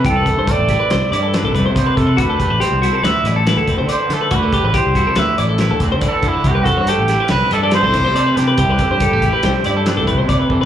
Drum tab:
HH |xxxxxxxxxx|xxxxxxxxxx|xxxxxxxxxx|xxxxxxxxxx|
SD |---oo-o---|--o-ooo--o|----o-o-o-|---oo-oo-o|
BD |oooo---ooo|oo-----o--|oooo---ooo|oo-----o--|

HH |xxxxxxxxx-|
SD |----ooo-o-|
BD |oooo---ooo|